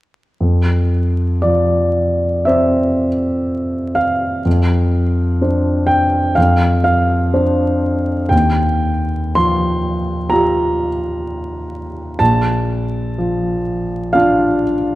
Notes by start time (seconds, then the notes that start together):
0.40 F2
1.42 F3 D5
2.45 C4 C5 E5
3.95 F5
4.45 F2
5.41 D4 C5
5.87 G5
6.35 F2 F5
6.84 F5
7.33 D4 C5
8.29 D#2 G5
9.35 F3 C6
10.30 F4 G4 A#5
12.19 A#1 A5
13.18 F3
14.13 D4 F4 F5